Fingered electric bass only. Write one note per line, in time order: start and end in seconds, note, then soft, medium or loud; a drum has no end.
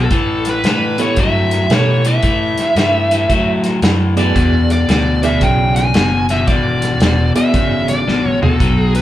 0.64 1.16 A2 medium
1.17 1.69 G2 medium
1.70 2.22 B2 medium
2.23 2.55 A2 medium
2.57 muted fingered electric bass stroke soft
2.75 3.28 G2 medium
3.30 3.81 A2 medium
3.82 4.34 F#2 medium
4.36 4.87 E2 medium
4.88 5.40 D2 medium
5.42 5.93 B1 medium
5.94 6.46 F#1 medium
6.48 6.99 G#1 medium
7.00 7.32 E1 medium
7.54 8.06 G#1 medium
8.07 8.58 A1 medium
8.60 9.02 B1 medium